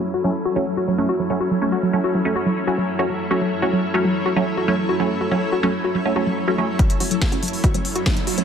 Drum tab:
HH |--------------------------------|--------------------------------|--------------------------------|--------------------------------|
SD |--------------------------------|--------------------------------|--------------------------------|--------------------------------|
BD |--------------------------------|--------------------------------|--------------------------------|--------------------------------|

HH |x-x-o-x-x-x-oxo-x-x-o-x-x-x-o-x-|
SD |--------o---------------o-------|
BD |o-------o-------o-------o-------|